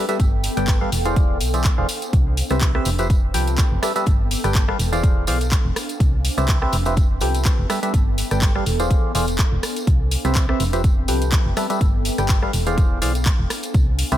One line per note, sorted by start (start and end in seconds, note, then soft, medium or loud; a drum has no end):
0.00 1.17 B3 medium
0.00 1.16 A4 medium
0.00 0.20 E5 medium
0.00 1.16 G5 medium
0.09 0.18 G3 loud
0.09 0.18 G4 medium
0.09 0.18 A4 medium
0.09 0.18 B4 medium
0.09 0.18 E5 loud
0.09 closed hi-hat medium
0.09 tambourine medium
0.20 0.49 G1 loud
0.20 kick loud
0.20 closed hi-hat medium
0.20 tambourine soft
0.44 2.13 F5 medium
0.44 open hi-hat loud
0.44 tambourine medium
0.57 0.85 G1 medium
0.57 0.78 G3 medium
0.57 0.78 G4 medium
0.57 0.78 A4 medium
0.57 0.78 B4 medium
0.57 0.78 G5 loud
0.57 closed hi-hat soft
0.57 tambourine medium
0.67 kick loud
0.67 clap loud
0.67 closed hi-hat medium
0.67 tambourine soft
0.81 0.90 G3 medium
0.81 0.90 G4 medium
0.81 0.90 A4 medium
0.81 0.90 B4 medium
0.81 0.90 F5 medium
0.92 1.42 E1 medium
0.92 open hi-hat loud
0.92 tambourine medium
1.05 1.38 E3 medium
1.05 1.38 G#4 medium
1.05 1.38 C5 medium
1.05 1.38 D5 medium
1.05 1.38 F5 loud
1.05 closed hi-hat soft
1.05 tambourine soft
1.16 2.53 D4 medium
1.16 kick loud
1.16 closed hi-hat medium
1.16 tambourine soft
1.41 1.70 B1 loud
1.41 open hi-hat loud
1.41 tambourine loud
1.54 1.69 E3 medium
1.54 1.69 G#4 medium
1.54 1.69 C5 medium
1.54 1.69 D5 medium
1.54 1.69 E5 medium
1.54 closed hi-hat soft
1.54 tambourine medium
1.64 kick loud
1.64 clap loud
1.64 closed hi-hat medium
1.64 tambourine soft
1.78 1.85 E1 medium
1.78 1.87 E3 medium
1.78 1.87 G#4 medium
1.78 1.87 C5 medium
1.78 1.87 D5 medium
1.78 1.87 F5 loud
1.89 open hi-hat medium
1.89 tambourine loud
2.02 closed hi-hat soft
2.02 tambourine medium
2.13 2.42 C2 loud
2.13 kick loud
2.13 closed hi-hat medium
2.13 tambourine soft
2.37 open hi-hat loud
2.37 tambourine medium
2.50 2.79 C2 medium
2.50 2.72 C4 medium
2.50 2.72 G4 medium
2.50 2.72 B4 medium
2.50 2.72 C5 medium
2.50 2.72 E5 loud
2.50 cross-stick medium
2.50 closed hi-hat soft
2.50 tambourine medium
2.57 4.07 E5 medium
2.57 5.03 G5 medium
2.57 clap loud
2.62 kick loud
2.62 closed hi-hat medium
2.62 tambourine soft
2.75 2.90 C4 medium
2.75 2.90 G4 medium
2.75 2.90 B4 medium
2.75 2.90 C5 medium
2.75 2.90 E5 loud
2.75 cross-stick medium
2.85 3.36 F1 medium
2.85 open hi-hat medium
2.85 tambourine loud
2.99 3.08 F3 medium
2.99 3.08 G4 medium
2.99 3.08 B4 medium
2.99 3.08 C5 medium
2.99 3.08 E5 loud
2.99 closed hi-hat soft
2.99 tambourine soft
3.10 5.04 B3 medium
3.10 kick loud
3.10 closed hi-hat medium
3.10 tambourine soft
3.34 3.63 C2 loud
3.34 3.80 F3 medium
3.34 3.80 G4 medium
3.34 3.80 A4 medium
3.34 3.80 B4 medium
3.34 3.80 G5 medium
3.34 open hi-hat loud
3.34 tambourine medium
3.47 closed hi-hat soft
3.47 tambourine medium
3.54 5.04 A4 medium
3.58 kick loud
3.58 clap loud
3.58 closed hi-hat medium
3.58 tambourine soft
3.72 3.78 F1 medium
3.82 3.93 G3 medium
3.82 3.93 G4 medium
3.82 3.93 A4 medium
3.82 3.93 B4 medium
3.82 3.93 E5 loud
3.82 cross-stick medium
3.82 open hi-hat medium
3.82 tambourine loud
3.96 4.05 G3 medium
3.96 4.05 G4 medium
3.96 4.05 A4 medium
3.96 4.05 B4 medium
3.96 4.05 E5 loud
3.96 closed hi-hat medium
3.96 tambourine medium
4.06 4.36 G1 loud
4.06 kick loud
4.06 closed hi-hat medium
4.06 tambourine soft
4.31 open hi-hat loud
4.31 tambourine medium
4.44 4.73 G1 medium
4.44 4.65 G3 medium
4.44 4.65 G4 medium
4.44 4.65 A4 medium
4.44 4.65 B4 medium
4.44 6.00 F5 medium
4.44 4.65 G5 loud
4.44 cross-stick medium
4.44 closed hi-hat soft
4.44 tambourine soft
4.55 kick loud
4.55 clap loud
4.55 closed hi-hat medium
4.55 tambourine soft
4.68 4.77 G3 medium
4.68 4.77 G4 medium
4.68 4.77 A4 medium
4.68 4.77 B4 medium
4.68 4.77 F5 loud
4.68 cross-stick medium
4.79 5.29 E1 loud
4.79 open hi-hat medium
4.79 tambourine medium
4.92 5.25 E3 medium
4.92 5.25 G#4 medium
4.92 5.25 C5 medium
4.92 5.25 D5 medium
4.92 5.25 F5 loud
4.92 closed hi-hat soft
4.92 tambourine soft
5.03 6.40 D4 medium
5.03 kick loud
5.03 closed hi-hat medium
5.03 tambourine soft
5.27 5.57 B1 loud
5.27 5.38 E3 medium
5.27 5.38 G#4 medium
5.27 5.38 C5 medium
5.27 5.38 D5 medium
5.27 5.38 F5 medium
5.27 open hi-hat loud
5.27 tambourine loud
5.41 closed hi-hat soft
5.41 tambourine soft
5.52 kick loud
5.52 clap loud
5.52 closed hi-hat medium
5.65 5.72 E1 medium
5.76 cross-stick medium
5.76 open hi-hat medium
5.76 tambourine medium
5.89 closed hi-hat medium
5.89 tambourine medium
6.00 6.30 C2 loud
6.00 kick loud
6.00 closed hi-hat medium
6.00 tambourine soft
6.25 open hi-hat loud
6.25 tambourine medium
6.38 6.66 C2 medium
6.38 6.59 C4 medium
6.38 6.59 G4 medium
6.38 6.59 B4 medium
6.38 6.59 C5 medium
6.38 6.59 E5 loud
6.38 cross-stick medium
6.38 closed hi-hat medium
6.38 tambourine soft
6.44 7.94 E5 medium
6.44 8.91 G5 medium
6.44 clap loud
6.48 kick loud
6.48 closed hi-hat medium
6.48 tambourine soft
6.62 6.77 C4 medium
6.62 6.77 G4 medium
6.62 6.77 B4 medium
6.62 6.77 C5 medium
6.62 6.77 E5 loud
6.62 cross-stick medium
6.73 7.23 F1 loud
6.73 open hi-hat medium
6.73 tambourine medium
6.85 6.95 F3 medium
6.85 6.95 G4 medium
6.85 6.95 B4 medium
6.85 6.95 C5 medium
6.85 6.95 E5 loud
6.85 closed hi-hat medium
6.85 tambourine soft
6.97 8.91 B3 medium
6.97 kick loud
6.97 closed hi-hat medium
6.97 tambourine soft
7.21 7.51 C2 loud
7.21 7.67 F3 medium
7.21 7.67 G4 medium
7.21 7.67 A4 medium
7.21 7.67 B4 medium
7.21 7.67 G5 medium
7.21 open hi-hat loud
7.21 tambourine medium
7.28 8.91 A4 medium
7.34 closed hi-hat medium
7.34 tambourine soft
7.45 kick loud
7.45 clap loud
7.45 closed hi-hat medium
7.45 tambourine soft
7.59 7.66 F1 medium
7.70 7.80 G3 medium
7.70 7.80 G4 medium
7.70 7.80 A4 medium
7.70 7.80 B4 medium
7.70 7.80 E5 loud
7.70 cross-stick medium
7.70 open hi-hat medium
7.70 tambourine medium
7.83 7.93 G3 loud
7.83 7.93 G4 medium
7.83 7.93 A4 medium
7.83 7.93 B4 medium
7.83 7.93 E5 loud
7.83 closed hi-hat medium
7.83 tambourine medium
7.94 8.23 G1 loud
7.94 kick loud
7.94 closed hi-hat medium
7.94 tambourine soft
8.18 open hi-hat loud
8.18 tambourine medium
8.31 8.60 G1 medium
8.31 8.52 G3 medium
8.31 8.52 G4 medium
8.31 8.52 A4 medium
8.31 8.52 B4 medium
8.31 8.52 G5 loud
8.31 cross-stick medium
8.31 closed hi-hat medium
8.31 tambourine soft
8.38 9.87 F5 medium
8.38 clap loud
8.42 kick loud
8.42 closed hi-hat medium
8.42 tambourine soft
8.55 8.64 G3 medium
8.55 8.64 G4 medium
8.55 8.64 A4 medium
8.55 8.64 B4 medium
8.55 8.64 F5 loud
8.55 cross-stick medium
8.66 8.96 E1 loud
8.66 open hi-hat medium
8.66 tambourine medium
8.79 9.12 E3 medium
8.79 9.12 G#4 medium
8.79 9.12 C5 medium
8.79 9.12 D5 medium
8.79 9.12 F5 loud
8.79 closed hi-hat medium
8.79 tambourine medium
8.91 10.27 D4 medium
8.91 kick loud
8.91 closed hi-hat medium
8.91 tambourine soft
9.15 9.44 E1 medium
9.15 9.26 E3 medium
9.15 9.26 G#4 medium
9.15 9.26 C5 medium
9.15 9.26 D5 medium
9.15 9.26 F5 loud
9.15 open hi-hat loud
9.15 tambourine medium
9.27 closed hi-hat medium
9.27 tambourine medium
9.38 kick loud
9.38 clap loud
9.38 closed hi-hat medium
9.52 9.59 E1 loud
9.63 cross-stick medium
9.63 open hi-hat medium
9.63 tambourine medium
9.76 closed hi-hat medium
9.76 tambourine soft
9.87 10.17 C2 loud
9.87 kick loud
9.87 closed hi-hat medium
10.11 12.78 G5 medium
10.11 open hi-hat loud
10.11 tambourine medium
10.25 10.53 C2 medium
10.25 10.46 C4 medium
10.25 10.46 G4 medium
10.25 10.46 B4 medium
10.25 10.46 C5 medium
10.25 10.46 E5 loud
10.25 cross-stick medium
10.25 closed hi-hat medium
10.25 tambourine medium
10.31 11.81 E5 medium
10.31 clap loud
10.36 kick loud
10.36 closed hi-hat medium
10.36 tambourine soft
10.49 10.64 C4 medium
10.49 10.64 G4 medium
10.49 10.64 B4 medium
10.49 10.64 C5 medium
10.49 10.64 E5 loud
10.49 cross-stick medium
10.60 11.10 F1 medium
10.60 open hi-hat medium
10.60 tambourine medium
10.73 10.82 F3 medium
10.73 10.82 G4 medium
10.73 10.82 B4 medium
10.73 10.82 C5 medium
10.73 10.82 E5 loud
10.73 closed hi-hat medium
10.73 tambourine soft
10.84 12.78 B3 medium
10.84 kick loud
10.84 closed hi-hat medium
10.84 tambourine soft
11.08 11.38 C2 medium
11.08 11.54 F3 medium
11.08 11.54 G4 medium
11.08 11.54 A4 medium
11.08 11.54 B4 medium
11.08 11.54 G5 medium
11.08 open hi-hat loud
11.08 tambourine medium
11.22 12.78 A4 medium
11.22 closed hi-hat medium
11.22 tambourine medium
11.32 kick loud
11.32 clap loud
11.32 closed hi-hat medium
11.32 tambourine soft
11.46 11.53 F1 medium
11.57 11.67 G3 medium
11.57 11.67 G4 medium
11.57 11.67 A4 medium
11.57 11.67 B4 medium
11.57 11.67 E5 loud
11.57 cross-stick medium
11.57 open hi-hat medium
11.57 tambourine medium
11.70 11.80 G3 loud
11.70 11.80 G4 medium
11.70 11.80 A4 medium
11.70 11.80 B4 medium
11.70 11.80 E5 loud
11.70 closed hi-hat medium
11.70 tambourine medium
11.81 12.10 G1 loud
11.81 kick loud
11.81 closed hi-hat medium
11.81 tambourine soft
12.05 open hi-hat loud
12.05 tambourine medium
12.18 12.47 G1 medium
12.18 12.39 G3 medium
12.18 12.39 G4 medium
12.18 12.39 A4 medium
12.18 12.39 B4 medium
12.18 12.39 G5 loud
12.18 cross-stick medium
12.18 closed hi-hat medium
12.18 tambourine medium
12.25 13.75 F5 medium
12.25 clap loud
12.29 kick loud
12.29 closed hi-hat medium
12.29 tambourine soft
12.42 12.52 G3 medium
12.42 12.51 G4 medium
12.42 12.51 A4 medium
12.42 12.52 B4 medium
12.42 12.51 F5 loud
12.42 cross-stick medium
12.53 13.03 E1 loud
12.53 open hi-hat loud
12.53 tambourine medium
12.66 12.99 E3 medium
12.66 12.99 G#4 medium
12.66 12.99 C5 medium
12.66 12.99 D5 medium
12.66 12.99 F5 loud
12.66 closed hi-hat medium
12.66 tambourine soft
12.78 14.14 D4 medium
12.78 kick loud
12.78 closed hi-hat medium
12.78 tambourine soft
13.02 13.31 B1 loud
13.02 13.13 E3 medium
13.02 13.13 G#4 medium
13.02 13.13 C5 medium
13.02 13.13 D5 medium
13.02 13.13 F5 loud
13.02 open hi-hat loud
13.02 tambourine medium
13.15 closed hi-hat medium
13.15 tambourine medium
13.26 kick loud
13.26 clap loud
13.26 closed hi-hat medium
13.26 tambourine soft
13.39 13.46 E1 medium
13.50 cross-stick medium
13.50 open hi-hat medium
13.50 tambourine medium
13.63 closed hi-hat medium
13.63 tambourine medium
13.74 14.04 C2 loud
13.74 kick loud
13.74 closed hi-hat medium
13.74 tambourine soft
13.91 14.18 E5 medium
13.99 open hi-hat loud
13.99 tambourine medium
14.12 14.18 C2 medium
14.12 14.18 C4 medium
14.12 14.18 G4 medium
14.12 14.18 B4 medium
14.12 14.18 C5 medium
14.12 14.18 E5 medium
14.12 cross-stick medium
14.12 closed hi-hat soft
14.12 tambourine soft